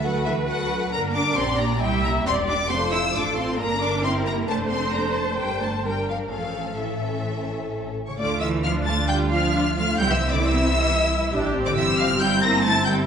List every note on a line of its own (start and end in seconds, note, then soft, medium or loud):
0.00 0.89 D2 medium
0.00 0.12 F#3 medium
0.00 0.47 F#4 medium
0.00 0.47 A4 medium
0.00 0.92 B4 medium
0.05 0.27 F#5 medium
0.26 0.34 E3 medium
0.26 0.34 E5 medium
0.48 0.91 F#3 medium
0.48 0.91 F#4 medium
0.48 0.91 A4 medium
0.48 0.91 F#5 loud
0.91 1.34 G1 medium
0.91 1.14 A#3 loud
0.91 1.77 D4 medium
0.91 1.34 A#4 medium
0.91 1.38 A#4 medium
0.91 1.01 A#5 loud
1.14 1.37 D4 medium
1.14 1.36 D6 loud
1.36 1.82 A#1 medium
1.36 1.59 C4 medium
1.36 1.80 G4 medium
1.36 1.80 D5 medium
1.36 1.59 C6 loud
1.59 1.81 A#3 medium
1.59 1.81 A#5 medium
1.80 2.26 C2 medium
1.80 2.03 G3 medium
1.80 2.26 E4 medium
1.80 2.24 G4 medium
1.80 2.26 E5 medium
1.80 2.03 G5 loud
2.03 2.26 A#3 medium
2.03 2.12 A#5 loud
2.25 2.70 E1 medium
2.25 2.33 C4 medium
2.25 2.70 G4 medium
2.25 2.70 D5 medium
2.25 2.35 C6 loud
2.47 2.55 D4 medium
2.47 2.71 D6 loud
2.70 3.15 F1 medium
2.70 2.78 C4 medium
2.70 3.58 F4 medium
2.70 3.13 A4 medium
2.70 3.15 C5 medium
2.70 2.93 C6 loud
2.92 3.00 E4 loud
2.92 3.14 E6 loud
3.14 3.60 A1 medium
3.14 3.37 D4 medium
3.14 3.59 A4 medium
3.14 3.60 A4 medium
3.14 3.38 D6 loud
3.37 3.59 C4 medium
3.37 3.60 C6 medium
3.59 4.49 G1 medium
3.59 3.82 A#3 loud
3.59 4.05 D4 medium
3.59 4.05 A#4 medium
3.59 4.48 A#4 medium
3.59 3.82 A#5 loud
3.81 4.04 D4 medium
3.81 4.05 D6 loud
4.04 4.27 C4 medium
4.04 4.49 E4 medium
4.04 4.48 G4 medium
4.04 4.12 C6 loud
4.26 4.49 A#3 medium
4.26 4.35 A#5 loud
4.48 5.35 F1 medium
4.48 4.72 A3 medium
4.48 5.35 D4 medium
4.48 5.35 A4 medium
4.48 5.85 C5 medium
4.48 4.57 A5 loud
4.69 4.94 C4 medium
4.69 4.93 C6 loud
4.93 5.17 A#3 medium
4.93 5.16 A#5 medium
5.16 5.39 A3 medium
5.16 5.39 A5 medium
5.38 6.31 G1 medium
5.38 5.62 G3 medium
5.38 5.83 D4 medium
5.38 5.83 A#4 medium
5.38 5.61 G5 medium
5.61 5.85 A3 medium
5.61 5.86 A5 medium
5.84 5.93 G3 medium
5.84 6.30 D4 medium
5.84 6.30 A#4 medium
5.84 6.08 G5 medium
6.08 6.16 F3 medium
6.08 6.17 F5 medium
6.31 7.94 A1 medium
6.31 6.77 F3 medium
6.31 6.76 C#4 soft
6.31 6.76 A4 medium
6.31 7.95 A4 medium
6.31 6.77 F5 medium
6.76 7.95 E3 medium
6.76 7.95 C#4 medium
6.76 7.95 A4 medium
6.76 7.94 E5 medium
8.07 8.18 C#3 medium
8.07 8.18 C#5 medium
8.07 8.17 C#6 medium
8.18 9.95 D2 medium
8.18 8.40 D3 medium
8.18 8.61 A3 medium
8.18 8.61 F4 medium
8.18 8.27 D5 medium
8.18 8.41 D6 loud
8.40 8.63 E3 medium
8.40 8.48 E5 medium
8.40 8.48 E6 medium
8.64 8.87 F3 medium
8.64 9.53 D4 medium
8.64 9.97 F4 medium
8.64 8.72 F5 medium
8.64 8.72 F6 medium
8.87 8.95 A3 loud
8.87 8.95 A5 medium
8.87 9.09 A6 loud
9.08 9.32 G3 loud
9.08 9.16 G5 loud
9.08 9.16 G6 loud
9.30 9.76 F3 medium
9.30 9.75 F5 medium
9.30 9.76 F6 loud
9.54 9.62 D4 medium
9.77 9.85 F3 medium
9.77 9.99 A3 medium
9.77 9.99 F5 medium
9.77 9.99 F6 loud
9.99 11.33 C2 medium
9.99 10.03 G3 loud
9.99 10.89 C4 medium
9.99 10.87 E4 medium
9.99 10.10 G5 loud
9.99 10.10 G6 loud
10.09 10.18 E3 medium
10.09 10.32 E5 medium
10.09 10.33 E6 loud
10.31 10.43 D3 medium
10.31 10.43 D5 medium
10.31 10.44 D6 loud
10.43 11.43 E3 medium
10.43 11.44 E5 loud
10.43 11.44 E6 loud
10.89 11.33 E4 medium
11.33 11.77 A1 medium
11.33 11.55 D4 medium
11.33 11.77 G4 medium
11.55 11.77 C4 medium
11.66 11.76 D3 medium
11.66 11.70 D5 medium
11.66 11.71 D6 loud
11.76 13.06 G1 loud
11.76 11.98 E3 loud
11.76 13.06 C4 medium
11.76 12.21 G4 medium
11.76 11.85 E5 medium
11.76 11.98 E6 loud
11.98 12.21 F3 loud
11.98 12.07 F5 loud
11.98 12.20 F6 loud
12.20 12.42 G3 loud
12.20 12.65 E4 medium
12.20 12.42 G5 loud
12.20 12.43 G6 loud
12.43 12.65 A#3 loud
12.43 12.65 A#5 loud
12.43 12.65 A#6 loud
12.63 12.72 A3 loud
12.63 13.06 E4 medium
12.63 12.86 A5 loud
12.63 12.87 A6 loud
12.86 13.06 G3 medium
12.86 12.94 G5 medium
12.86 12.94 G6 loud